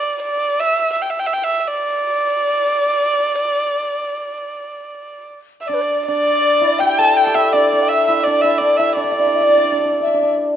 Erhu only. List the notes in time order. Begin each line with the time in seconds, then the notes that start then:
Already playing: D5
0.23 D5
0.60 E5
0.93 E5
1.02 G5
1.10 E5
1.19 G5
1.26 E5
1.33 G5
1.44 E5
1.60 E5
1.68 D5
5.61 E5
5.68 D5
6.06 D5
6.80 G5
6.99 A5
7.16 G5
7.24 G5 A5
7.35 E5
7.52 D5
7.70 D5
7.89 E5
8.07 E5
8.24 D5
8.41 E5
8.58 D5
8.77 E5
8.96 D5